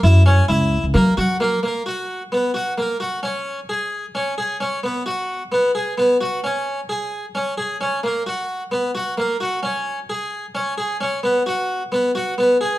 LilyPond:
<<
  \new Staff \with { instrumentName = "Harpsichord" } { \time 7/8 \key cis \dorian \tempo 4 = 131 e'8 cis'8 e'4 ais8 fis'8 ais8 | ais8 fis'4 b8 fis'8 ais8 fis'8 | cis'4 gis'4 cis'8 gis'8 cis'8 | b8 fis'4 b8 gis'8 b8 fis'8 |
cis'4 gis'4 cis'8 gis'8 cis'8 | ais8 fis'4 b8 fis'8 ais8 fis'8 | cis'4 gis'4 cis'8 gis'8 cis'8 | b8 fis'4 b8 fis'8 b8 gis'8 | }
  \new Staff \with { instrumentName = "Upright bass" } { \clef bass \time 7/8 \key cis \dorian fis,4 cis,8. cis,16 fis8 fis4 | r2. r8 | r2. r8 | r2. r8 |
r2. r8 | r2. r8 | r2. r8 | r2. r8 | }
>>